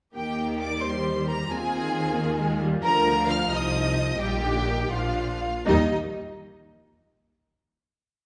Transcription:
0.15 D#2 D#3 A#3 D#4 G4 G5
0.61 D5 D6
0.84 G3 G4 C5 C6
1.28 A#4 A#5
1.50 D#2 D#3 C4 F4 G#4 G#5
2.17 A#3
2.39 G#3
2.61 G3
2.83 D2 D3 F3 F4 A#4 A#5
3.28 F5 F6
3.50 C2 C3 D#4 D#5 D#6
4.18 A#1 A#2 G3 D#4 G4 G5
4.43 D3
4.67 D#3
4.91 A#1 A#2 F3 D4 F4 F5
5.66 D#2 D#3 G3 D#4 D#5

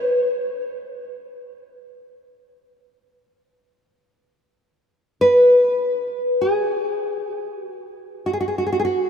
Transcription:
Already playing: B4
5.21 B4
6.41 G#4
7.64 F#4
8.26 F#4
8.33 G#4
8.41 F#4
8.48 G#4
8.58 F#4
8.67 G#4
8.73 F#4
8.80 G#4
8.85 F#4

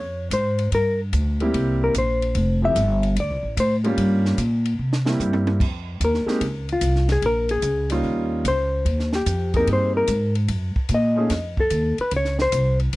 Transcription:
Already playing: F2 C#5
0.30 G#2 C5, kick, hi-hat pedal, ride
0.59 ride
0.72 G2 A#4, kick, ride
1.13 D2, kick, hi-hat pedal, ride
1.40 G3 A#3 C4 E4 G4, ride
1.54 C2, kick, ride
1.84 A#4
1.94 A#1 C5, kick, hi-hat pedal, ride
2.22 ride
2.35 F1, kick, ride
2.62 F3 A3 C4 E4 G4 E5
2.75 G1, kick, hi-hat pedal, ride
3.03 ride
3.16 D2, kick, ride
3.20 D5
3.30 C2
3.43 A1
3.57 A2 C5, kick, hi-hat pedal, ride
3.84 G3 A#3 C#4 F4 G4, ride
3.97 G2, kick, ride
4.25 snare
4.38 A#2, kick, hi-hat pedal, ride
4.65 ride
4.79 C3
4.93 snare
5.05 G3 A#3 C4 E4 G4, snare
5.19 G2, hi-hat pedal, high tom
5.33 high tom
5.47 high tom
5.60 F2, kick, crash
6.00 D#2, kick, hi-hat pedal, ride
6.05 A#4
6.14 snare
6.26 G#3 A#3 C4 D#4 G4, muted upright bass stroke, snare
6.41 C#2, kick, ride
6.69 F4, ride
6.81 C2, kick, hi-hat pedal, ride
6.96 snare
7.09 G#4, snare, ride
7.22 A#1 A#4, kick, ride
7.49 G#4, ride
7.62 C#2, kick, hi-hat pedal, ride
7.90 G3 A#3 C#4 D#4 F4, ride
8.03 D#2, kick
8.45 C#2 C5, kick, hi-hat pedal, ride
8.85 D#2, kick, ride
8.99 snare
9.13 G4, snare
9.26 F2, kick, hi-hat pedal, ride
9.54 A#3 C4 D#4 G4 G#4 A#4, kick, ride
9.67 G2, kick, ride
9.73 C5
9.97 A#4
10.07 G#2, kick, hi-hat pedal, ride
10.35 ride
10.48 F#2, kick, ride
10.76 muted upright bass stroke, kick
10.89 A#2, kick, hi-hat pedal, ride
10.94 D#5
11.16 A3 C#4 D#4 F4 G#4
11.30 F2, kick, snare, ride
11.57 A4, kick
11.70 D#2, kick, hi-hat pedal, ride
11.98 B4, muted upright bass stroke, ride
12.11 C#2, kick, ride
12.16 C#5
12.25 snare
12.39 C5, snare
12.52 C2, kick, hi-hat pedal, ride
12.80 ride
12.93 ride

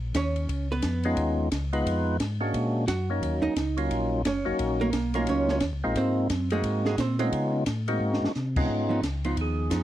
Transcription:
Already playing: A#1
0.14 D#2 C#4 C#5, kick, snare, hi-hat pedal, ride
0.36 ride
0.49 C#2, kick, ride
0.72 B3 B4
0.82 F2, kick, snare, hi-hat pedal, ride
1.03 G#3 B3 C#4 D#4 F4, ride
1.17 D#2, kick, ride
1.52 C#2, kick, snare, hi-hat pedal, ride
1.73 G#3 B3 D#4 F4 B4, ride
1.86 F2, kick, ride
2.20 G#2, kick, snare, hi-hat pedal, ride
2.40 G#3 A#3 C#4 D4 F#4
2.54 A#2, kick, ride
2.88 F#2 F#4 F#5, kick, snare, hi-hat pedal, ride
3.10 F#3 A#3 C#4 D#4
3.22 D#2, kick, ride
3.42 D#2 D#4 D#5
3.56 C#2, kick, snare, hi-hat pedal, ride
3.77 F#3 A#3 C#4 D#4 F4, ride
3.91 A#1, kick, ride
4.25 F#1 C#4 C#5, kick, snare, hi-hat pedal, ride
4.45 F#1 F#3 A#3 C#4 D#4 F#4
4.59 A#1, kick, ride
4.81 A#3 A#4
4.93 B1, kick, snare, hi-hat pedal, ride
5.14 F#3 A#3 C#4 D#4 F4 A#4, ride
5.27 C#2 C#4 C#5, kick, ride
5.48 C#4 C#5, snare
5.60 D#2, kick, snare, hi-hat pedal, ride
5.73 C#2
5.84 A#1 G#3 A#3 C4 D#4 F4
5.95 G#2 C4 C5, kick, ride
6.30 F#2, kick, snare, hi-hat pedal, ride
6.50 G#3 A#3 C4 D#4 F#4 G#4, ride
6.64 G#2, kick, ride
6.85 G#3 G#4, snare
6.98 A#2 C4 C5, kick, snare, hi-hat pedal, ride
7.19 G#3 B3 C4 C#4 D#4 F4 C5, ride
7.32 C#3, kick, ride
7.66 A2, kick, snare, hi-hat pedal, ride
7.88 G#3 A#3 C4 D#4 F#4, ride
8.00 G#2
8.13 snare
8.22 G#2, snare
8.35 C3, snare, hi-hat pedal
8.56 G#3 B3 C#4 D#4 F4, kick, crash
8.69 G#2, kick
8.89 F3 B3 D#4
9.03 C#2, kick, snare, hi-hat pedal, ride
9.24 F3 B3 D#4 F4, ride
9.37 D#2, kick, ride
9.41 G#4
9.70 F2 F3 B3 D#4, kick, snare, hi-hat pedal, ride

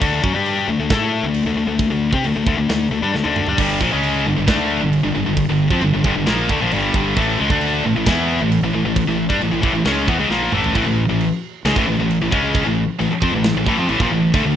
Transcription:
0.00 D2 D3 A3 D4, kick, crash
0.22 F#2 F#3 C#4, kick
0.34 G2 G3 D4 G4
0.46 crash
0.68 D2 D3 A3
0.79 D2 D3 A3
0.90 A2 A3 E4 A4, kick, snare, crash
1.23 D2 D3 A3
1.34 crash
1.45 D2 D3 A3
1.56 D2 D3 A3
1.67 D2 D3 A3
1.79 kick, crash
1.90 D2 D3 A3
2.13 C3 C4 G4, kick
2.24 D2 D3 A3, crash
2.36 D2 D3 A3
2.46 D2 D3 A3, kick
2.57 D2 D3 A3
2.69 D2 D3 A3, snare, crash
2.91 D2 D3 A3
3.02 G2 G3 D4
3.13 D2 D3 A3, snare
3.24 D2 D3 A3 D4, high tom
3.36 mid tom
3.47 G2 G3 D4, floor tom
3.58 G1 G2 D3 G3, kick, crash
3.81 A#1 A#2 F3, kick
3.93 C#2 C#3 G#3 C#4
4.03 crash
4.26 G1 G2 D3
4.37 G1 G2 D3
4.47 D2 D3 A3 D4, kick, snare, crash
4.81 G1 G2 D3
4.93 crash
5.03 G1 G2 D3
5.14 G1 G2 D3
5.26 G1 G2 D3
5.37 kick, crash
5.49 G1 G2 D3
5.71 F2 F3 C4, kick
5.81 G1 G2 D3, crash
5.93 G1 G2 D3
6.04 G1 G2 D3, kick
6.16 G1 G2 D3
6.26 A#1 A#2 F3 A#3, snare, crash
6.49 D2 D3 A3, kick
6.61 A#1 A#2 F3
6.72 G1 G2 D3 G3, crash
6.94 G1 G2 D3 G3, kick
7.16 A1 A2 E3 A3, kick, crash
7.39 C#2 C#3 G#3
7.50 D2 D3 A3 D4, kick
7.61 crash
7.84 A1 A2 E3
7.96 A1 A2 E3
8.06 E2 E3 B3 E4, kick, snare, crash
8.41 A1 A2 E3
8.52 crash
8.62 A1 A2 E3
8.74 A1 A2 E3
8.85 A1 A2 E3
8.96 kick, crash
9.07 A1 A2 E3
9.29 G2 G3 D4, kick
9.40 A1 A2 E3, crash
9.52 A1 A2 E3
9.62 A1 A2 E3, kick
9.73 A1 A2 E3
9.85 C#2 C#3 G#3 C#4, snare, crash
10.07 E2 E3 B3, kick
10.19 C#2 C#3 G#3
10.30 A#1 A#2 F3 A#3, snare
10.52 A1 A2 E3 A3, mid tom
10.64 floor tom
10.74 A1 A2 E3, kick, crash
10.86 A1 A2 E3
11.09 A1 A2 E3
11.21 crash
11.65 C#2 C#3 G#3, snare, crash
11.76 A1 A2 E3, kick
11.88 A1 A2 E3
11.99 A1 A2 E3
12.11 crash
12.22 A1 A2 E3
12.31 C#2 C#3 G#3 C#4, kick
12.55 kick, crash
12.65 A1 A2 E3
12.99 A1 A2 E3, crash
13.11 muted fingered electric bass stroke, muted distorted electric guitar stroke
13.22 F2 F3 C4, kick
13.33 A1 A2 E3
13.44 snare, crash
13.55 A1 A2 E3
13.66 A1 A2 E3, kick
13.77 F2 F3 C4
13.89 A1 A2 E3, crash
14.00 A#1 A#2 F3, kick
14.11 A1 A2 E3
14.34 D2 D3 A3, kick, crash
14.45 D2 D3 A3

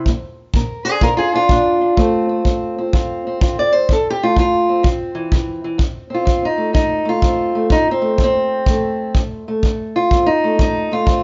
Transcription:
0.06 A#2, kick
0.54 A#2 A#4, kick
0.85 D4 G#4 C5
1.01 A#2 F4 A#4, kick
1.17 F4 G#4
1.34 D4 F4
1.49 A#2 D4, kick
1.81 D4
1.97 F2 A3 C4, kick
2.29 C4
2.45 F2 C4, kick
2.78 C4
2.93 F2 F4, kick
3.27 C4
3.41 F2 F4, kick
3.59 D5
3.73 C4 C5
3.89 F2 A4, kick
4.10 G4
4.23 A3 F4
4.36 F2 F4, kick
4.69 C4
4.83 C3, kick
5.15 E3
5.32 C3 E3, kick
5.64 E3
5.78 F2, kick
6.10 C4
6.14 F4
6.25 F2 C4, kick
6.45 D#4
6.58 A3
6.73 F2 D#4, kick
7.05 A3 F4
7.22 F2 C4, kick
7.55 A3
7.70 F2 D#4, kick
7.91 C4
8.02 A3
8.18 F2, kick
8.24 C4
8.66 F2 A3, kick
9.15 F2, kick
9.48 A3
9.63 F2, kick
9.96 F4
10.11 F2 C4, kick
10.26 D#4
10.44 A3
10.59 F2 D#4, kick
10.91 A3 F4
11.06 F2 C4, kick

